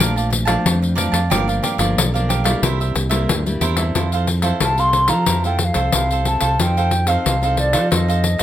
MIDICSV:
0, 0, Header, 1, 7, 480
1, 0, Start_track
1, 0, Key_signature, -1, "major"
1, 0, Tempo, 660793
1, 955, Time_signature, 4, 2, 24, 8
1, 6123, End_track
2, 0, Start_track
2, 0, Title_t, "Flute"
2, 0, Program_c, 0, 73
2, 3361, Note_on_c, 0, 81, 82
2, 3484, Note_on_c, 0, 84, 81
2, 3495, Note_off_c, 0, 81, 0
2, 3702, Note_on_c, 0, 82, 81
2, 3712, Note_off_c, 0, 84, 0
2, 3947, Note_off_c, 0, 82, 0
2, 3964, Note_on_c, 0, 79, 76
2, 4074, Note_off_c, 0, 79, 0
2, 4074, Note_on_c, 0, 79, 75
2, 4100, Note_on_c, 0, 77, 82
2, 4107, Note_off_c, 0, 79, 0
2, 4560, Note_on_c, 0, 81, 84
2, 4571, Note_off_c, 0, 77, 0
2, 4805, Note_on_c, 0, 79, 87
2, 4816, Note_off_c, 0, 81, 0
2, 5144, Note_on_c, 0, 77, 78
2, 5155, Note_off_c, 0, 79, 0
2, 5513, Note_on_c, 0, 74, 78
2, 5524, Note_off_c, 0, 77, 0
2, 5750, Note_off_c, 0, 74, 0
2, 5754, Note_on_c, 0, 75, 75
2, 6123, Note_off_c, 0, 75, 0
2, 6123, End_track
3, 0, Start_track
3, 0, Title_t, "Cavaquinho"
3, 0, Program_c, 1, 24
3, 0, Note_on_c, 1, 70, 63
3, 0, Note_on_c, 1, 74, 64
3, 0, Note_on_c, 1, 77, 65
3, 5, Note_on_c, 1, 81, 72
3, 105, Note_off_c, 1, 70, 0
3, 107, Note_off_c, 1, 74, 0
3, 108, Note_off_c, 1, 81, 0
3, 109, Note_off_c, 1, 77, 0
3, 116, Note_on_c, 1, 81, 43
3, 122, Note_on_c, 1, 77, 39
3, 129, Note_on_c, 1, 74, 39
3, 211, Note_off_c, 1, 74, 0
3, 214, Note_off_c, 1, 77, 0
3, 218, Note_off_c, 1, 81, 0
3, 329, Note_on_c, 1, 81, 65
3, 339, Note_on_c, 1, 77, 61
3, 344, Note_on_c, 1, 74, 55
3, 573, Note_off_c, 1, 81, 0
3, 578, Note_off_c, 1, 77, 0
3, 580, Note_off_c, 1, 74, 0
3, 693, Note_on_c, 1, 70, 67
3, 696, Note_on_c, 1, 74, 67
3, 701, Note_on_c, 1, 77, 72
3, 708, Note_on_c, 1, 81, 72
3, 802, Note_off_c, 1, 81, 0
3, 811, Note_on_c, 1, 81, 43
3, 812, Note_off_c, 1, 77, 0
3, 815, Note_off_c, 1, 70, 0
3, 816, Note_off_c, 1, 74, 0
3, 821, Note_on_c, 1, 77, 41
3, 826, Note_on_c, 1, 74, 39
3, 933, Note_off_c, 1, 81, 0
3, 938, Note_off_c, 1, 77, 0
3, 941, Note_off_c, 1, 74, 0
3, 944, Note_on_c, 1, 67, 68
3, 951, Note_on_c, 1, 70, 71
3, 953, Note_on_c, 1, 74, 68
3, 958, Note_on_c, 1, 77, 78
3, 1060, Note_off_c, 1, 67, 0
3, 1063, Note_off_c, 1, 70, 0
3, 1063, Note_off_c, 1, 77, 0
3, 1064, Note_off_c, 1, 74, 0
3, 1072, Note_on_c, 1, 77, 46
3, 1078, Note_on_c, 1, 74, 45
3, 1087, Note_on_c, 1, 70, 38
3, 1177, Note_off_c, 1, 70, 0
3, 1181, Note_off_c, 1, 74, 0
3, 1181, Note_on_c, 1, 67, 47
3, 1184, Note_off_c, 1, 77, 0
3, 1186, Note_on_c, 1, 70, 48
3, 1190, Note_on_c, 1, 74, 56
3, 1194, Note_on_c, 1, 77, 52
3, 1287, Note_off_c, 1, 77, 0
3, 1294, Note_off_c, 1, 74, 0
3, 1295, Note_on_c, 1, 77, 67
3, 1298, Note_off_c, 1, 67, 0
3, 1300, Note_off_c, 1, 70, 0
3, 1303, Note_on_c, 1, 74, 56
3, 1309, Note_on_c, 1, 70, 53
3, 1535, Note_off_c, 1, 77, 0
3, 1538, Note_off_c, 1, 74, 0
3, 1541, Note_off_c, 1, 70, 0
3, 1553, Note_on_c, 1, 77, 45
3, 1559, Note_on_c, 1, 74, 37
3, 1564, Note_on_c, 1, 70, 37
3, 1659, Note_off_c, 1, 70, 0
3, 1663, Note_off_c, 1, 74, 0
3, 1663, Note_on_c, 1, 67, 43
3, 1664, Note_off_c, 1, 77, 0
3, 1668, Note_on_c, 1, 70, 52
3, 1671, Note_on_c, 1, 74, 46
3, 1675, Note_on_c, 1, 77, 53
3, 1765, Note_off_c, 1, 77, 0
3, 1772, Note_off_c, 1, 74, 0
3, 1773, Note_on_c, 1, 77, 64
3, 1779, Note_off_c, 1, 67, 0
3, 1781, Note_off_c, 1, 70, 0
3, 1781, Note_on_c, 1, 74, 59
3, 1790, Note_on_c, 1, 70, 55
3, 1894, Note_off_c, 1, 77, 0
3, 1897, Note_off_c, 1, 74, 0
3, 1902, Note_off_c, 1, 70, 0
3, 1910, Note_on_c, 1, 64, 71
3, 1915, Note_on_c, 1, 70, 63
3, 1917, Note_on_c, 1, 72, 67
3, 1922, Note_on_c, 1, 76, 68
3, 2022, Note_off_c, 1, 64, 0
3, 2024, Note_off_c, 1, 70, 0
3, 2025, Note_off_c, 1, 72, 0
3, 2026, Note_off_c, 1, 76, 0
3, 2035, Note_on_c, 1, 76, 42
3, 2044, Note_on_c, 1, 72, 39
3, 2050, Note_on_c, 1, 70, 38
3, 2137, Note_off_c, 1, 70, 0
3, 2139, Note_off_c, 1, 76, 0
3, 2140, Note_off_c, 1, 72, 0
3, 2248, Note_on_c, 1, 76, 62
3, 2256, Note_on_c, 1, 72, 55
3, 2262, Note_on_c, 1, 70, 52
3, 2491, Note_off_c, 1, 76, 0
3, 2495, Note_off_c, 1, 72, 0
3, 2498, Note_off_c, 1, 70, 0
3, 2622, Note_on_c, 1, 64, 65
3, 2630, Note_on_c, 1, 70, 62
3, 2632, Note_on_c, 1, 72, 70
3, 2635, Note_on_c, 1, 76, 72
3, 2736, Note_off_c, 1, 76, 0
3, 2738, Note_off_c, 1, 64, 0
3, 2740, Note_off_c, 1, 72, 0
3, 2742, Note_off_c, 1, 70, 0
3, 2744, Note_on_c, 1, 76, 46
3, 2749, Note_on_c, 1, 72, 41
3, 2756, Note_on_c, 1, 70, 38
3, 2859, Note_off_c, 1, 76, 0
3, 2861, Note_off_c, 1, 72, 0
3, 2865, Note_off_c, 1, 70, 0
3, 2875, Note_on_c, 1, 64, 45
3, 2879, Note_on_c, 1, 69, 41
3, 2884, Note_on_c, 1, 72, 47
3, 2888, Note_on_c, 1, 77, 47
3, 2984, Note_off_c, 1, 64, 0
3, 2986, Note_off_c, 1, 69, 0
3, 2988, Note_off_c, 1, 72, 0
3, 2991, Note_off_c, 1, 77, 0
3, 2999, Note_on_c, 1, 77, 58
3, 3008, Note_on_c, 1, 72, 58
3, 3013, Note_on_c, 1, 69, 48
3, 3102, Note_off_c, 1, 69, 0
3, 3106, Note_off_c, 1, 72, 0
3, 3106, Note_off_c, 1, 77, 0
3, 3217, Note_on_c, 1, 77, 66
3, 3225, Note_on_c, 1, 72, 58
3, 3231, Note_on_c, 1, 69, 49
3, 3335, Note_off_c, 1, 77, 0
3, 3339, Note_off_c, 1, 72, 0
3, 3342, Note_off_c, 1, 69, 0
3, 3355, Note_on_c, 1, 64, 41
3, 3358, Note_on_c, 1, 69, 45
3, 3361, Note_on_c, 1, 72, 48
3, 3365, Note_on_c, 1, 77, 48
3, 3464, Note_off_c, 1, 64, 0
3, 3466, Note_off_c, 1, 69, 0
3, 3467, Note_off_c, 1, 72, 0
3, 3469, Note_off_c, 1, 77, 0
3, 3477, Note_on_c, 1, 77, 59
3, 3485, Note_on_c, 1, 72, 52
3, 3489, Note_on_c, 1, 69, 52
3, 3686, Note_off_c, 1, 77, 0
3, 3695, Note_off_c, 1, 72, 0
3, 3695, Note_on_c, 1, 77, 61
3, 3699, Note_off_c, 1, 69, 0
3, 3704, Note_on_c, 1, 72, 57
3, 3708, Note_on_c, 1, 69, 49
3, 3814, Note_off_c, 1, 77, 0
3, 3819, Note_off_c, 1, 72, 0
3, 3821, Note_off_c, 1, 69, 0
3, 3835, Note_on_c, 1, 64, 43
3, 3841, Note_on_c, 1, 69, 41
3, 3844, Note_on_c, 1, 72, 44
3, 3849, Note_on_c, 1, 77, 43
3, 3944, Note_off_c, 1, 64, 0
3, 3948, Note_off_c, 1, 69, 0
3, 3949, Note_off_c, 1, 72, 0
3, 3950, Note_off_c, 1, 77, 0
3, 3959, Note_on_c, 1, 77, 57
3, 3966, Note_on_c, 1, 72, 49
3, 3971, Note_on_c, 1, 69, 42
3, 4058, Note_off_c, 1, 69, 0
3, 4060, Note_off_c, 1, 77, 0
3, 4061, Note_off_c, 1, 72, 0
3, 4172, Note_on_c, 1, 77, 57
3, 4180, Note_on_c, 1, 72, 53
3, 4185, Note_on_c, 1, 69, 48
3, 4293, Note_off_c, 1, 77, 0
3, 4297, Note_off_c, 1, 72, 0
3, 4300, Note_off_c, 1, 69, 0
3, 4305, Note_on_c, 1, 64, 42
3, 4311, Note_on_c, 1, 69, 42
3, 4314, Note_on_c, 1, 72, 47
3, 4317, Note_on_c, 1, 77, 46
3, 4420, Note_off_c, 1, 64, 0
3, 4423, Note_off_c, 1, 69, 0
3, 4424, Note_off_c, 1, 72, 0
3, 4426, Note_off_c, 1, 77, 0
3, 4435, Note_on_c, 1, 77, 56
3, 4445, Note_on_c, 1, 72, 54
3, 4447, Note_on_c, 1, 69, 54
3, 4645, Note_off_c, 1, 77, 0
3, 4654, Note_on_c, 1, 77, 64
3, 4655, Note_off_c, 1, 72, 0
3, 4663, Note_off_c, 1, 69, 0
3, 4664, Note_on_c, 1, 72, 55
3, 4671, Note_on_c, 1, 69, 50
3, 4774, Note_off_c, 1, 77, 0
3, 4779, Note_off_c, 1, 72, 0
3, 4783, Note_off_c, 1, 69, 0
3, 4788, Note_on_c, 1, 63, 40
3, 4792, Note_on_c, 1, 69, 45
3, 4798, Note_on_c, 1, 72, 50
3, 4801, Note_on_c, 1, 77, 46
3, 4902, Note_off_c, 1, 63, 0
3, 4904, Note_off_c, 1, 69, 0
3, 4907, Note_off_c, 1, 72, 0
3, 4908, Note_off_c, 1, 77, 0
3, 4919, Note_on_c, 1, 77, 62
3, 4923, Note_on_c, 1, 72, 57
3, 4930, Note_on_c, 1, 69, 48
3, 5024, Note_off_c, 1, 69, 0
3, 5025, Note_off_c, 1, 72, 0
3, 5027, Note_off_c, 1, 77, 0
3, 5143, Note_on_c, 1, 77, 60
3, 5151, Note_on_c, 1, 72, 53
3, 5155, Note_on_c, 1, 69, 49
3, 5260, Note_off_c, 1, 77, 0
3, 5264, Note_off_c, 1, 72, 0
3, 5266, Note_off_c, 1, 69, 0
3, 5279, Note_on_c, 1, 63, 41
3, 5285, Note_on_c, 1, 69, 46
3, 5288, Note_on_c, 1, 72, 50
3, 5292, Note_on_c, 1, 77, 48
3, 5388, Note_off_c, 1, 63, 0
3, 5391, Note_off_c, 1, 69, 0
3, 5392, Note_off_c, 1, 77, 0
3, 5393, Note_off_c, 1, 72, 0
3, 5401, Note_on_c, 1, 77, 61
3, 5408, Note_on_c, 1, 72, 52
3, 5415, Note_on_c, 1, 69, 50
3, 5608, Note_off_c, 1, 77, 0
3, 5617, Note_off_c, 1, 72, 0
3, 5617, Note_on_c, 1, 77, 63
3, 5623, Note_off_c, 1, 69, 0
3, 5626, Note_on_c, 1, 72, 54
3, 5632, Note_on_c, 1, 69, 50
3, 5737, Note_off_c, 1, 77, 0
3, 5741, Note_off_c, 1, 69, 0
3, 5742, Note_off_c, 1, 72, 0
3, 5744, Note_on_c, 1, 63, 43
3, 5750, Note_on_c, 1, 69, 41
3, 5756, Note_on_c, 1, 72, 42
3, 5758, Note_on_c, 1, 77, 48
3, 5861, Note_off_c, 1, 63, 0
3, 5863, Note_off_c, 1, 77, 0
3, 5864, Note_off_c, 1, 69, 0
3, 5867, Note_off_c, 1, 72, 0
3, 5872, Note_on_c, 1, 77, 55
3, 5880, Note_on_c, 1, 72, 51
3, 5886, Note_on_c, 1, 69, 46
3, 5972, Note_off_c, 1, 69, 0
3, 5976, Note_off_c, 1, 72, 0
3, 5978, Note_off_c, 1, 77, 0
3, 6091, Note_on_c, 1, 77, 57
3, 6101, Note_on_c, 1, 72, 59
3, 6123, Note_off_c, 1, 72, 0
3, 6123, Note_off_c, 1, 77, 0
3, 6123, End_track
4, 0, Start_track
4, 0, Title_t, "Nylon-string guitar"
4, 0, Program_c, 2, 24
4, 0, Note_on_c, 2, 46, 54
4, 2, Note_on_c, 2, 53, 49
4, 3, Note_on_c, 2, 57, 48
4, 7, Note_on_c, 2, 62, 58
4, 319, Note_off_c, 2, 53, 0
4, 321, Note_off_c, 2, 57, 0
4, 322, Note_off_c, 2, 62, 0
4, 348, Note_on_c, 2, 53, 59
4, 351, Note_on_c, 2, 57, 60
4, 355, Note_on_c, 2, 62, 67
4, 453, Note_off_c, 2, 46, 0
4, 482, Note_on_c, 2, 41, 54
4, 673, Note_off_c, 2, 53, 0
4, 674, Note_off_c, 2, 57, 0
4, 676, Note_off_c, 2, 62, 0
4, 713, Note_on_c, 2, 53, 54
4, 717, Note_on_c, 2, 57, 50
4, 719, Note_on_c, 2, 62, 56
4, 856, Note_off_c, 2, 53, 0
4, 856, Note_off_c, 2, 57, 0
4, 858, Note_off_c, 2, 62, 0
4, 934, Note_off_c, 2, 41, 0
4, 958, Note_on_c, 2, 43, 54
4, 960, Note_on_c, 2, 53, 47
4, 966, Note_on_c, 2, 58, 53
4, 968, Note_on_c, 2, 62, 55
4, 1278, Note_off_c, 2, 53, 0
4, 1279, Note_off_c, 2, 58, 0
4, 1282, Note_off_c, 2, 62, 0
4, 1307, Note_on_c, 2, 53, 58
4, 1308, Note_on_c, 2, 58, 57
4, 1311, Note_on_c, 2, 62, 69
4, 1412, Note_off_c, 2, 43, 0
4, 1436, Note_on_c, 2, 50, 52
4, 1512, Note_off_c, 2, 53, 0
4, 1512, Note_off_c, 2, 58, 0
4, 1514, Note_off_c, 2, 62, 0
4, 1562, Note_on_c, 2, 53, 59
4, 1567, Note_on_c, 2, 58, 57
4, 1568, Note_on_c, 2, 62, 67
4, 1760, Note_off_c, 2, 53, 0
4, 1761, Note_off_c, 2, 58, 0
4, 1762, Note_off_c, 2, 62, 0
4, 1779, Note_on_c, 2, 55, 54
4, 1783, Note_on_c, 2, 58, 60
4, 1788, Note_on_c, 2, 64, 61
4, 1891, Note_off_c, 2, 50, 0
4, 1912, Note_on_c, 2, 48, 52
4, 2227, Note_off_c, 2, 55, 0
4, 2230, Note_off_c, 2, 58, 0
4, 2231, Note_off_c, 2, 64, 0
4, 2254, Note_on_c, 2, 55, 55
4, 2256, Note_on_c, 2, 58, 56
4, 2260, Note_on_c, 2, 64, 62
4, 2368, Note_off_c, 2, 48, 0
4, 2384, Note_on_c, 2, 43, 52
4, 2465, Note_off_c, 2, 55, 0
4, 2466, Note_off_c, 2, 58, 0
4, 2468, Note_off_c, 2, 64, 0
4, 2516, Note_on_c, 2, 55, 59
4, 2517, Note_on_c, 2, 58, 55
4, 2521, Note_on_c, 2, 64, 59
4, 2716, Note_off_c, 2, 55, 0
4, 2716, Note_off_c, 2, 58, 0
4, 2719, Note_off_c, 2, 64, 0
4, 2739, Note_on_c, 2, 60, 55
4, 2743, Note_on_c, 2, 64, 62
4, 2746, Note_on_c, 2, 69, 61
4, 2844, Note_off_c, 2, 43, 0
4, 2870, Note_on_c, 2, 53, 44
4, 3188, Note_off_c, 2, 60, 0
4, 3188, Note_off_c, 2, 64, 0
4, 3191, Note_off_c, 2, 69, 0
4, 3214, Note_on_c, 2, 60, 55
4, 3218, Note_on_c, 2, 64, 56
4, 3221, Note_on_c, 2, 69, 59
4, 3327, Note_off_c, 2, 53, 0
4, 3346, Note_on_c, 2, 48, 50
4, 3425, Note_off_c, 2, 60, 0
4, 3426, Note_off_c, 2, 64, 0
4, 3429, Note_off_c, 2, 69, 0
4, 3476, Note_on_c, 2, 60, 55
4, 3482, Note_on_c, 2, 69, 59
4, 3805, Note_off_c, 2, 48, 0
4, 3832, Note_on_c, 2, 53, 51
4, 3916, Note_off_c, 2, 60, 0
4, 3919, Note_off_c, 2, 69, 0
4, 3958, Note_on_c, 2, 60, 48
4, 3958, Note_on_c, 2, 64, 52
4, 3962, Note_on_c, 2, 69, 60
4, 4157, Note_off_c, 2, 60, 0
4, 4157, Note_off_c, 2, 64, 0
4, 4159, Note_off_c, 2, 69, 0
4, 4172, Note_on_c, 2, 60, 52
4, 4179, Note_on_c, 2, 69, 68
4, 4289, Note_off_c, 2, 53, 0
4, 4308, Note_on_c, 2, 48, 49
4, 4505, Note_off_c, 2, 60, 0
4, 4508, Note_off_c, 2, 69, 0
4, 4541, Note_on_c, 2, 60, 48
4, 4546, Note_on_c, 2, 64, 47
4, 4550, Note_on_c, 2, 69, 54
4, 4749, Note_off_c, 2, 60, 0
4, 4752, Note_off_c, 2, 64, 0
4, 4754, Note_off_c, 2, 69, 0
4, 4768, Note_off_c, 2, 48, 0
4, 4787, Note_on_c, 2, 53, 47
4, 4790, Note_on_c, 2, 60, 47
4, 4792, Note_on_c, 2, 69, 51
4, 4793, Note_on_c, 2, 63, 52
4, 5114, Note_off_c, 2, 60, 0
4, 5115, Note_off_c, 2, 63, 0
4, 5116, Note_off_c, 2, 69, 0
4, 5130, Note_on_c, 2, 60, 55
4, 5135, Note_on_c, 2, 63, 54
4, 5136, Note_on_c, 2, 69, 61
4, 5248, Note_off_c, 2, 53, 0
4, 5263, Note_on_c, 2, 48, 48
4, 5345, Note_off_c, 2, 60, 0
4, 5346, Note_off_c, 2, 63, 0
4, 5347, Note_off_c, 2, 69, 0
4, 5387, Note_on_c, 2, 60, 60
4, 5393, Note_on_c, 2, 63, 58
4, 5395, Note_on_c, 2, 69, 61
4, 5714, Note_off_c, 2, 60, 0
4, 5717, Note_off_c, 2, 63, 0
4, 5717, Note_off_c, 2, 69, 0
4, 5726, Note_off_c, 2, 48, 0
4, 5746, Note_on_c, 2, 53, 49
4, 5747, Note_on_c, 2, 60, 46
4, 5751, Note_on_c, 2, 63, 52
4, 5753, Note_on_c, 2, 69, 56
4, 6075, Note_off_c, 2, 60, 0
4, 6076, Note_off_c, 2, 63, 0
4, 6078, Note_off_c, 2, 69, 0
4, 6123, Note_off_c, 2, 53, 0
4, 6123, End_track
5, 0, Start_track
5, 0, Title_t, "Fingered electric bass"
5, 0, Program_c, 3, 33
5, 0, Note_on_c, 3, 34, 84
5, 404, Note_off_c, 3, 34, 0
5, 477, Note_on_c, 3, 41, 82
5, 782, Note_off_c, 3, 41, 0
5, 819, Note_on_c, 3, 41, 91
5, 928, Note_off_c, 3, 41, 0
5, 952, Note_on_c, 3, 31, 88
5, 1157, Note_off_c, 3, 31, 0
5, 1298, Note_on_c, 3, 31, 75
5, 1407, Note_off_c, 3, 31, 0
5, 1428, Note_on_c, 3, 35, 82
5, 1838, Note_off_c, 3, 35, 0
5, 1907, Note_on_c, 3, 36, 86
5, 2113, Note_off_c, 3, 36, 0
5, 2146, Note_on_c, 3, 36, 81
5, 2365, Note_off_c, 3, 36, 0
5, 2393, Note_on_c, 3, 38, 67
5, 2609, Note_off_c, 3, 38, 0
5, 2622, Note_on_c, 3, 40, 75
5, 2843, Note_off_c, 3, 40, 0
5, 2871, Note_on_c, 3, 41, 80
5, 3280, Note_off_c, 3, 41, 0
5, 3350, Note_on_c, 3, 36, 75
5, 3693, Note_on_c, 3, 53, 67
5, 3704, Note_off_c, 3, 36, 0
5, 3803, Note_off_c, 3, 53, 0
5, 3834, Note_on_c, 3, 41, 77
5, 4140, Note_off_c, 3, 41, 0
5, 4180, Note_on_c, 3, 36, 74
5, 4288, Note_off_c, 3, 36, 0
5, 4315, Note_on_c, 3, 36, 68
5, 4621, Note_off_c, 3, 36, 0
5, 4663, Note_on_c, 3, 36, 71
5, 4770, Note_off_c, 3, 36, 0
5, 4794, Note_on_c, 3, 41, 86
5, 5203, Note_off_c, 3, 41, 0
5, 5273, Note_on_c, 3, 36, 75
5, 5624, Note_on_c, 3, 53, 71
5, 5635, Note_off_c, 3, 36, 0
5, 5732, Note_off_c, 3, 53, 0
5, 5754, Note_on_c, 3, 41, 81
5, 6062, Note_off_c, 3, 41, 0
5, 6123, End_track
6, 0, Start_track
6, 0, Title_t, "Muted cavaquinho strokes"
6, 218, Note_on_c, 9, 29, 35
6, 291, Note_off_c, 9, 29, 0
6, 597, Note_on_c, 9, 29, 38
6, 670, Note_off_c, 9, 29, 0
6, 2142, Note_on_c, 9, 29, 32
6, 2214, Note_off_c, 9, 29, 0
6, 2514, Note_on_c, 9, 29, 37
6, 2587, Note_off_c, 9, 29, 0
6, 3111, Note_on_c, 9, 29, 33
6, 3183, Note_off_c, 9, 29, 0
6, 4063, Note_on_c, 9, 29, 32
6, 4136, Note_off_c, 9, 29, 0
6, 5031, Note_on_c, 9, 29, 37
6, 5104, Note_off_c, 9, 29, 0
6, 5981, Note_on_c, 9, 29, 33
6, 6054, Note_off_c, 9, 29, 0
6, 6123, End_track
7, 0, Start_track
7, 0, Title_t, "Pandeiro"
7, 3, Note_on_c, 9, 54, 75
7, 75, Note_off_c, 9, 54, 0
7, 127, Note_on_c, 9, 54, 31
7, 200, Note_off_c, 9, 54, 0
7, 237, Note_on_c, 9, 54, 57
7, 310, Note_off_c, 9, 54, 0
7, 345, Note_on_c, 9, 54, 64
7, 418, Note_off_c, 9, 54, 0
7, 479, Note_on_c, 9, 54, 77
7, 551, Note_off_c, 9, 54, 0
7, 606, Note_on_c, 9, 54, 33
7, 678, Note_off_c, 9, 54, 0
7, 710, Note_on_c, 9, 54, 56
7, 783, Note_off_c, 9, 54, 0
7, 826, Note_on_c, 9, 54, 62
7, 898, Note_off_c, 9, 54, 0
7, 955, Note_on_c, 9, 54, 70
7, 1027, Note_off_c, 9, 54, 0
7, 1081, Note_on_c, 9, 54, 30
7, 1154, Note_off_c, 9, 54, 0
7, 1188, Note_on_c, 9, 54, 53
7, 1261, Note_off_c, 9, 54, 0
7, 1302, Note_on_c, 9, 54, 59
7, 1374, Note_off_c, 9, 54, 0
7, 1441, Note_on_c, 9, 54, 78
7, 1513, Note_off_c, 9, 54, 0
7, 1565, Note_on_c, 9, 54, 32
7, 1637, Note_off_c, 9, 54, 0
7, 1672, Note_on_c, 9, 54, 56
7, 1744, Note_off_c, 9, 54, 0
7, 1783, Note_on_c, 9, 54, 62
7, 1856, Note_off_c, 9, 54, 0
7, 1911, Note_on_c, 9, 54, 74
7, 1984, Note_off_c, 9, 54, 0
7, 2041, Note_on_c, 9, 54, 30
7, 2114, Note_off_c, 9, 54, 0
7, 2147, Note_on_c, 9, 54, 54
7, 2219, Note_off_c, 9, 54, 0
7, 2258, Note_on_c, 9, 54, 60
7, 2330, Note_off_c, 9, 54, 0
7, 2392, Note_on_c, 9, 54, 76
7, 2464, Note_off_c, 9, 54, 0
7, 2516, Note_on_c, 9, 54, 33
7, 2589, Note_off_c, 9, 54, 0
7, 2624, Note_on_c, 9, 54, 53
7, 2697, Note_off_c, 9, 54, 0
7, 2736, Note_on_c, 9, 54, 61
7, 2808, Note_off_c, 9, 54, 0
7, 2870, Note_on_c, 9, 54, 67
7, 2943, Note_off_c, 9, 54, 0
7, 2994, Note_on_c, 9, 54, 29
7, 3067, Note_off_c, 9, 54, 0
7, 3104, Note_on_c, 9, 54, 48
7, 3177, Note_off_c, 9, 54, 0
7, 3212, Note_on_c, 9, 54, 54
7, 3285, Note_off_c, 9, 54, 0
7, 3344, Note_on_c, 9, 54, 75
7, 3417, Note_off_c, 9, 54, 0
7, 3470, Note_on_c, 9, 54, 28
7, 3543, Note_off_c, 9, 54, 0
7, 3582, Note_on_c, 9, 54, 48
7, 3654, Note_off_c, 9, 54, 0
7, 3688, Note_on_c, 9, 54, 61
7, 3761, Note_off_c, 9, 54, 0
7, 3824, Note_on_c, 9, 54, 72
7, 3896, Note_off_c, 9, 54, 0
7, 3951, Note_on_c, 9, 54, 27
7, 4024, Note_off_c, 9, 54, 0
7, 4058, Note_on_c, 9, 54, 53
7, 4130, Note_off_c, 9, 54, 0
7, 4171, Note_on_c, 9, 54, 57
7, 4244, Note_off_c, 9, 54, 0
7, 4304, Note_on_c, 9, 54, 75
7, 4376, Note_off_c, 9, 54, 0
7, 4436, Note_on_c, 9, 54, 29
7, 4509, Note_off_c, 9, 54, 0
7, 4542, Note_on_c, 9, 54, 49
7, 4615, Note_off_c, 9, 54, 0
7, 4653, Note_on_c, 9, 54, 59
7, 4725, Note_off_c, 9, 54, 0
7, 4791, Note_on_c, 9, 54, 69
7, 4863, Note_off_c, 9, 54, 0
7, 4922, Note_on_c, 9, 54, 28
7, 4994, Note_off_c, 9, 54, 0
7, 5021, Note_on_c, 9, 54, 49
7, 5094, Note_off_c, 9, 54, 0
7, 5134, Note_on_c, 9, 54, 57
7, 5207, Note_off_c, 9, 54, 0
7, 5273, Note_on_c, 9, 54, 69
7, 5345, Note_off_c, 9, 54, 0
7, 5395, Note_on_c, 9, 54, 30
7, 5468, Note_off_c, 9, 54, 0
7, 5501, Note_on_c, 9, 54, 48
7, 5573, Note_off_c, 9, 54, 0
7, 5616, Note_on_c, 9, 54, 59
7, 5689, Note_off_c, 9, 54, 0
7, 5751, Note_on_c, 9, 54, 69
7, 5823, Note_off_c, 9, 54, 0
7, 5881, Note_on_c, 9, 54, 29
7, 5953, Note_off_c, 9, 54, 0
7, 5984, Note_on_c, 9, 54, 50
7, 6057, Note_off_c, 9, 54, 0
7, 6097, Note_on_c, 9, 54, 59
7, 6123, Note_off_c, 9, 54, 0
7, 6123, End_track
0, 0, End_of_file